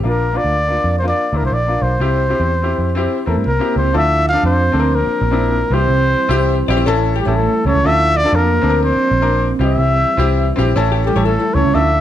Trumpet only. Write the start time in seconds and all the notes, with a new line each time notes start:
0.08 A#4
0.37 D5
0.99 C5
1.08 D5
1.37 A#4
1.45 C5
1.53 D5
1.82 C5
3.27 A4
3.47 A#4
3.78 C5
3.97 E5
4.29 F5
4.45 C5
4.95 A#4
5.74 C5
7.20 G4
7.36 A4
7.67 C#5
7.86 E5
8.17 D5
8.35 A#4
8.83 C5
9.64 E5
11.06 G4
11.25 A4
11.54 C#5
11.75 E5